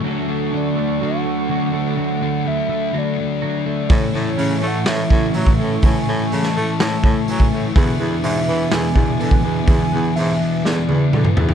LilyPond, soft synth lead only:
\new Staff \with { instrumentName = "Soft synth lead" } { \time 4/4 \key a \major \tempo 4 = 125 r4 d''4 fis''2 | fis''4 e''4 d''4. d''8 | cis''4. fis''8 e''4. r8 | gis''4 a''4 a''4 gis''8. r16 |
r4 e''4 gis''2 | gis''4 e''4 d''4. r8 | }